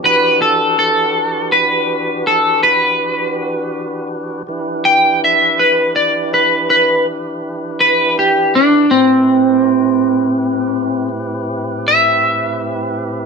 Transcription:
<<
  \new Staff \with { instrumentName = "Clean electric guitar" } { \time 12/8 \key e \minor \tempo 4. = 54 b'8 a'8 a'4 b'4 a'8 b'2 r8 | r8 g''8 e''8 b'8 d''8 b'8 b'8 r4 b'8 g'8 d'8 | c'2. r4 e''2 | }
  \new Staff \with { instrumentName = "Tonewheel organ" } { \time 12/8 \key e \minor <e d' fis' g' b'>1. | <e d' e' g' b'>1. | <a, c' e' g' b'>1. | }
>>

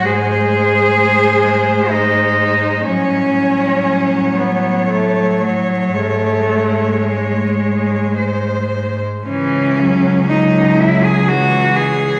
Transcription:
<<
  \new Staff \with { instrumentName = "Cello" } { \time 3/4 \key cis \minor \tempo 4 = 59 bis'2. | cis''2.~ | cis''2 bis'4 | cis'4 dis'8 e'16 gis'16 fis'8 gis'8 | }
  \new Staff \with { instrumentName = "Cello" } { \time 3/4 \key cis \minor gis'2 dis'4 | cis'4. b8 a8 fis8 | a4 gis4. r8 | e4 gis2 | }
  \new Staff \with { instrumentName = "Cello" } { \clef bass \time 3/4 \key cis \minor gis2. | fis2. | gis2. | e8 fis8 fis4 e4 | }
  \new Staff \with { instrumentName = "Cello" } { \clef bass \time 3/4 \key cis \minor gis,2. | a,2. | gis,2. | cis,2. | }
>>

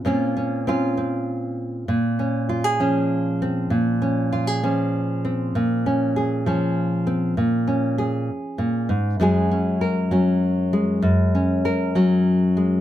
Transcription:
\new Staff \with { instrumentName = "Nylon-string guitar" } { \time 6/8 \key bes \minor \tempo 4. = 65 << { <c' des' f'>8 des'8 <c' des' f'>8 c'4. | r8 des'8 f'16 aes'16 des'4 c'8 | r8 des'8 f'16 aes'16 des'4 c'8 | r8 des'8 aes'8 des'4 c'8 |
r8 des'8 aes'2 | <ges aes des' aes'>8 des'8 bes'8 des'4 aes8~ | aes8 des'8 bes'8 des'4 aes8 | } \\ { bes,2. | bes,4. f4. | bes,4. f4. | bes,4. f4. |
bes,4. r8 bes,8 aes,8 | ges,4. ges4. | ges,4. ges4. | } >> }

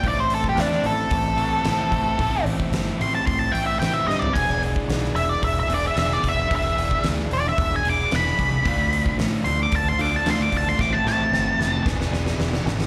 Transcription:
<<
  \new Staff \with { instrumentName = "Lead electric guitar" } { \time 4/4 \key a \minor \tempo 4 = 112 d''16 c''16 a'16 g'16 d'8 a'2~ a'8~ | a'8 r4 c'''16 a''16 c'''16 a''16 g''16 e''16 g''16 e''16 dis''16 d''16 | gis''8 r4 e''16 d''16 e''16 e''16 d''16 e''16 e''16 d''16 e''8 | e''4 r8 d''16 e''8 gis''16 d'''8 b''4~ |
b''4 r8 c'''16 d'''16 a''16 c'''16 d'''16 a''16 c'''16 d'''16 a''16 c'''16 | d'''16 a''16 a''4. r2 | }
  \new Staff \with { instrumentName = "Tonewheel organ" } { \time 4/4 \key a \minor \tuplet 3/2 { <cis' f' gis' c''>8 <c' e' g' b'>4~ } <c' e' g' b'>2.~ | <c' e' g' b'>1 | <d' e' gis' b'>1~ | <d' e' gis' b'>1 |
<c' f' a'>1 | <c' e' g' b'>2 <d' e' gis' b'>2 | }
  \new Staff \with { instrumentName = "Overdriven electric guitar" } { \time 4/4 \key a \minor <a, e a c' e'>2~ <a, e a c' e'>8 <a, e a c' e'>8 <a, e a c' e'>4 | <a, e a c' e'>2~ <a, e a c' e'>8 <a, e a c' e'>8 <a, e a c' e'>4 | <e b d' gis'>2~ <e b d' gis'>8 <e b d' gis'>8 <e b d' gis'>4 | <e b d' gis'>2~ <e b d' gis'>8 <e b d' gis'>8 <e b d' gis'>4 |
<d a d' f'>2~ <d a d' f'>8 <d a d' f'>8 <d a d' f'>4 | <a, e a c' e'>2 <e b d' gis'>2 | }
  \new Staff \with { instrumentName = "Picked electric bass" } { \clef bass \time 4/4 \key a \minor a,,4 e,8 a,,8 a,,8 a,,8 a,,8 a,,8 | a,,8 a,,8 g,,8 a,,8 a,,8 a,,8 a,,8 g,8 | e,,4 b,,8 e,,8 e,,8 e,,8 e,,8 e,,8 | e,,8 e,,8 d,8 e,,8 e,,8 e,,8 e,,8 c,8 |
d,4 a,8 d,8 d,8 d,8 d,8 d,8 | a,,8 a,,8 g,,8 f,,8 e,,8 e,,8 e,,8 gis,,8 | }
  \new DrumStaff \with { instrumentName = "Drums" } \drummode { \time 4/4 <hho bd>8 hho16 bd16 <hho sn>16 sn16 hho8 <hho bd>8 hho8 <hho sn>8 <hho bd>8 | <hho bd>8 hho16 bd16 <hho sn>16 sn16 hho8 <hho bd>8 hho8 <hho sn>8 sn16 tomfh16 | <cymc hho bd>8 hho16 bd16 <hho sn>16 sn16 hho8 <hho bd>8 hho8 <hho sn>16 sn16 <hho bd>8 | <hho bd>8 hho16 bd16 <hho sn>16 sn16 hho8 <hho bd>8 hho8 <hho sn>16 sn16 <hho bd>8 |
<hho bd>8 hho16 bd16 <hho sn>8 hho8 <hho bd>8 hho8 <hho sn>16 sn16 <hho bd>8 | <bd sn>8 sn8 sn8 sn8 <bd sn>16 sn16 sn16 sn16 sn16 sn16 sn16 sn16 | }
>>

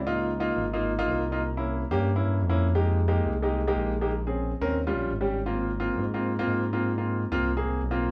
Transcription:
<<
  \new Staff \with { instrumentName = "Grand piano" } { \time 4/4 \key aes \major \tempo 4 = 178 <bes ees' f'>8. r16 <bes ees' f'>8. r16 <bes ees' f'>8 r16 <bes ees' f'>8. r16 <bes ees' f'>16 | r8 <bes des' e'>8. r16 <bes des' g'>8 r16 <bes des' e'>8. r16 <bes des' e'>8 r16 | <aes bes ees' g'>8. r16 <aes bes ees' g'>8. r16 <aes bes ees' g'>8 r16 <aes bes ees' g'>8. r16 <aes bes ees' g'>16 | r8 <c' des' aes'>8. r16 <c' des' bes'>8 r16 <g des' f'>8. r16 <g des' g'>8 r16 |
<bes c' f'>8. r16 <bes c' f'>8. r16 <bes c' f'>8 r16 <bes c' f'>8. r16 <bes c' f'>16~ | <bes c' f'>16 r16 <bes c' f'>8. r16 <bes c' f'>8 r16 <bes c' aes'>8. r16 <bes c' f'>8 r16 | }
  \new Staff \with { instrumentName = "Analog synth bass" } { \clef bass \time 4/4 \key aes \major des,4. aes,,4. c,4~ | c,4. g,4 g,8 f,4~ | f,4. c,4. bes,,4~ | bes,,4. ees,4 bes,,8 aes,,4~ |
aes,,4. aes,4. aes,4~ | aes,4. c,4 c,8 ces,4 | }
>>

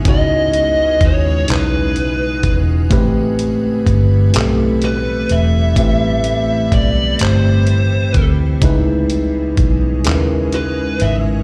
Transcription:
<<
  \new Staff \with { instrumentName = "Lead electric guitar" } { \time 6/8 \key cis \minor \tempo 4. = 42 dis''4 cis''8 b'4 r8 | r2 b'8 e''8~ | e''4 d''8 c''4 r8 | r2 b'8 e''8 | }
  \new Staff \with { instrumentName = "Tine electric piano" } { \time 6/8 \key cis \minor <cis cis' dis' e' fis'>4. <cis cis' dis' e' b'>4. | <a, a c' g' b'>4. <a, a c' g' a'>4. | <a, a c' g' b'>4. <a, a c' g' c''>4. | <cis gis dis' e' b'>4. <cis gis cis' e' ais' b'>4. | }
  \new Staff \with { instrumentName = "Ambient pad" } { \clef bass \time 6/8 \key cis \minor << { b'2.~ | b'2. | c'2. | r2. | } \\ { <b, cis gis cis'>2. | <e g a e'>2.~ | <e g a e'>2. | <b, cis gis cis'>2. | } >> }
  \new Staff \with { instrumentName = "Fingered electric bass" } { \clef bass \time 6/8 \key cis \minor cis,4 dis,8 b,,4 e,,8 | a,,4 g,,8 b,,4 e,,8 | a,,4 b,,8 g,,4 d,8 | cis,4 b,,8 dis,4 gis,,8 | }
  \new DrumStaff \with { instrumentName = "Drums" } \drummode { \time 6/8 <hh bd>8 hh8 <hh bd>8 <hc hh>8 hh8 <hh bd>8 | <hh bd>8 hh8 <hh bd>8 <hc hh>8 hh8 hh8 | <hh bd>8 hh8 <hh bd>8 <hc hh>8 hh8 <hh bd>8 | <hh bd>8 hh8 <hh bd>8 <hc hh>8 hh8 hh8 | }
>>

